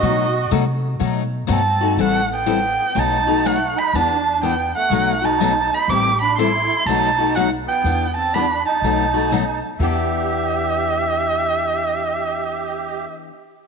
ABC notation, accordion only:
X:1
M:4/4
L:1/8
Q:"Swing" 1/4=123
K:Bphr
V:1 name="Accordion"
F2 z4 C2 | [K:Em] A, B,3 ^D2 A, D | D2 B, A,2 ^D2 D | G D E2 ^D2 A, B,- |
B, C D ^D4 z | G8- | G8 |]